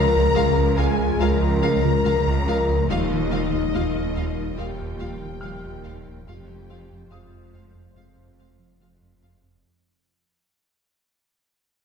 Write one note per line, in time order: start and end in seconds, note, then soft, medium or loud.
0.00 0.25 C#2 medium
0.00 2.91 C#2 medium
0.00 2.84 F3 medium
0.00 2.84 G#3 medium
0.00 2.85 F4 medium
0.00 0.75 A#4 loud
0.00 2.89 A#4 medium
0.00 0.75 A#5 loud
0.16 0.28 C#2 medium
0.34 1.10 C#2 medium
0.34 0.49 C#2 medium
0.34 0.43 G#3 medium
0.34 0.42 F4 medium
0.34 0.44 F5 medium
0.58 0.70 C#2 medium
0.77 0.91 C#2 medium
0.77 0.85 G#3 medium
0.77 0.85 F4 medium
0.77 1.20 G#4 loud
0.77 0.86 F5 medium
0.77 1.19 G#5 medium
0.99 1.11 C#2 medium
1.19 1.94 C#2 medium
1.19 1.33 C#2 medium
1.19 1.27 G#3 medium
1.19 1.27 F4 medium
1.19 2.86 A#4 loud
1.19 1.29 F5 medium
1.19 2.89 A#5 medium
1.43 1.55 C#2 medium
1.62 1.75 C#2 medium
1.62 1.70 G#3 medium
1.62 1.70 F4 medium
1.62 1.71 F5 medium
1.85 1.97 C#3 medium
2.03 2.78 C#2 medium
2.03 2.79 C#2 medium
2.03 2.19 C#3 medium
2.03 2.12 G#3 medium
2.03 2.12 F4 medium
2.03 2.13 F5 medium
2.27 2.40 C#2 medium
2.47 2.60 C#2 medium
2.47 2.55 G#3 medium
2.47 2.55 F4 medium
2.47 2.56 F5 medium
2.69 2.81 C#2 medium
2.89 6.28 D#1 medium
2.89 3.63 D#2 medium
2.89 3.03 D#2 medium
2.89 6.23 F3 medium
2.89 2.97 G3 medium
2.89 6.27 G3 medium
2.89 4.55 D#4 medium
2.89 2.97 F4 medium
2.89 6.23 F4 medium
2.89 6.23 A#4 medium
2.89 4.55 D#5 medium
2.89 2.98 F5 medium
3.12 3.24 D#3 medium
3.30 3.45 D#3 medium
3.30 3.40 G3 medium
3.30 3.40 F4 medium
3.30 3.38 F5 medium
3.54 3.66 D#2 medium
3.73 4.48 D#2 medium
3.73 3.87 D#2 medium
3.73 3.82 G3 medium
3.73 3.82 F4 medium
3.73 3.83 F5 medium
3.95 4.07 D#2 medium
4.15 4.29 D#2 medium
4.15 4.24 G3 soft
4.15 4.24 F4 soft
4.15 4.23 F5 soft
4.38 4.51 D#2 medium
4.57 5.32 D#2 medium
4.57 4.72 D#2 medium
4.57 4.66 G3 soft
4.57 4.66 F4 soft
4.57 6.09 G4 medium
4.57 4.67 F5 medium
4.57 6.25 G5 medium
4.81 4.93 D#2 medium
4.99 5.14 D#2 medium
4.99 5.08 G3 soft
4.99 5.07 F4 soft
4.99 5.07 F5 soft
5.24 5.36 D#3 medium
5.41 6.17 D#2 medium
5.41 5.57 D#3 medium
5.41 5.50 G3 soft
5.41 5.50 F4 soft
5.41 5.50 F5 soft
5.41 7.91 F6 soft
5.65 5.78 D#2 medium
5.84 5.99 D#2 medium
5.84 5.93 G3 soft
5.84 5.93 F4 soft
5.84 5.92 F5 soft
6.08 6.20 D#2 medium
6.26 7.01 F1 medium
6.26 9.65 F1 medium
6.26 7.02 F2 medium
6.26 6.41 F2 medium
6.26 9.61 F3 medium
6.26 9.65 G#3 medium
6.26 6.35 G#3 soft
6.26 6.34 F4 soft
6.26 9.61 F4 medium
6.26 7.09 G4 medium
6.26 9.65 C5 medium
6.26 6.35 F5 soft
6.26 7.09 G5 medium
6.50 6.62 F3 medium
6.69 6.83 F3 medium
6.69 6.77 G#3 soft
6.69 6.77 F4 soft
6.69 6.78 F5 soft
6.92 7.04 F2 medium
7.11 7.86 F1 soft
7.11 7.86 F2 soft
7.11 7.25 F2 medium
7.11 7.19 G#3 soft
7.11 7.19 F4 soft
7.11 8.81 F4 medium
7.11 8.77 F5 soft
7.11 7.19 F5 soft
7.11 9.61 D#6 soft
7.34 7.46 F2 soft
7.53 7.66 F2 medium
7.53 7.61 G#3 soft
7.53 7.61 F4 soft
7.53 7.61 F5 soft
7.75 7.88 F2 medium
7.95 8.70 F1 medium
7.95 8.70 F2 soft
7.95 8.09 F2 soft
7.95 8.03 G#3 soft
7.95 8.03 F4 soft
7.95 8.04 F5 soft
8.18 8.30 F2 medium
8.37 8.51 F2 medium
8.37 8.46 G#3 soft
8.37 8.45 F4 soft
8.37 8.48 F5 soft
8.60 8.72 F3 soft
8.80 9.55 F1 soft
8.80 9.55 F2 soft
8.80 8.94 F3 medium
8.80 8.88 G#3 soft
8.80 8.88 F4 soft
8.80 8.89 F5 soft
9.02 9.14 F2 medium
9.22 9.36 F2 soft
9.22 9.30 G#3 soft
9.22 9.30 F4 soft
9.22 9.31 F5 soft
9.44 9.56 F2 medium